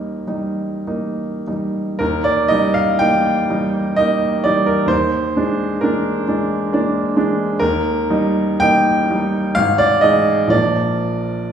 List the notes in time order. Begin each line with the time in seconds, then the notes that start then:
Already playing: D#2 G3 A#3 D#4 A#4
0.27 G3 D#4
0.87 A#3 D#4
1.47 G3 D#4
1.99 D#2 A#4
2.24 D5
2.48 G3 D#4 D#5
2.74 F5
2.99 A#3 D#4 G5
3.50 G3 D#4
3.96 A#3 D#4 D#5
4.44 G3 D#4 D5
4.66 A#4
4.86 D#2 C5
5.36 G#3 D4
5.81 A#3 D4 A#4
6.28 G#3 D4
6.73 A#3 D4
7.16 G#3 D4
7.59 D#2 A#4
8.10 G3 D#4
8.60 A#3 D#4 G5
9.10 G3 D#4
9.55 G#1 F5
9.78 D5
10.01 G#3 D#4 D#5
10.47 A#1 F3 A#3 D5